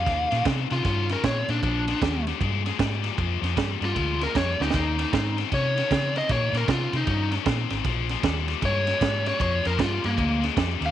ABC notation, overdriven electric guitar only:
X:1
M:4/4
L:1/8
Q:"Swing" 1/4=154
K:Eb
V:1 name="Overdriven electric guitar" clef=bass
[E,B,] [E,B,] [E,C] [E,C] [E,_D] [E,D] C [E,C] | [B,,F,] [B,,F,] [B,,G,] [B,,G,] [B,,A,] [B,,A,] [B,,G,] [B,,G,] | [B,,F,] [B,,F,] [B,,G,] [B,,G,] [B,,A,] [B,,A,] [B,,G,] [B,,G,] | [E,B,] [E,B,] [E,C] [E,C] [E,_D] [E,D] [E,C] [E,C] |
[E,B,] [E,B,] [E,C] [E,C] [E,_D] [E,D] [E,C] [E,C] | [B,,F,] [B,,F,] [B,,G,] [B,,G,] [B,,A,] [B,,A,] G, [B,,G,] | [B,,F,] [B,,F,] [B,,G,] [B,,G,] [B,,A,] [B,,A,] [B,,G,] [B,,G,] |]